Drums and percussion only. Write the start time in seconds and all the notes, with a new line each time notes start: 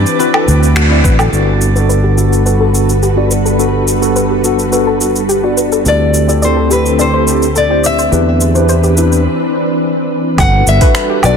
0.06 shaker
0.20 shaker
0.34 finger snap, low woodblock
0.48 shaker
0.63 shaker
0.76 finger snap, shaker
1.04 kick, shaker
1.19 low woodblock, shaker
1.33 shaker
1.61 shaker
1.76 shaker
1.90 shaker
2.18 shaker
2.33 shaker
2.46 shaker
2.75 shaker
2.89 shaker
3.03 shaker
3.31 shaker
3.46 shaker
3.60 shaker
3.88 shaker
4.03 shaker
4.16 shaker
4.44 shaker
4.59 shaker
4.73 shaker
5.01 shaker
5.16 shaker
5.29 shaker
5.58 shaker
5.72 shaker
5.86 shaker
6.14 shaker
6.29 shaker
6.43 shaker
6.71 shaker
6.86 shaker
6.99 shaker
7.28 shaker
7.42 shaker
7.56 shaker
7.84 shaker
7.99 shaker
8.13 shaker
8.41 shaker
8.55 shaker
8.69 shaker
8.84 shaker
8.97 shaker
9.12 shaker
10.38 kick, open hi-hat, low woodblock, shaker
10.67 shaker
10.81 kick, open hi-hat, shaker
10.95 finger snap, open hi-hat, shaker
11.23 low woodblock, shaker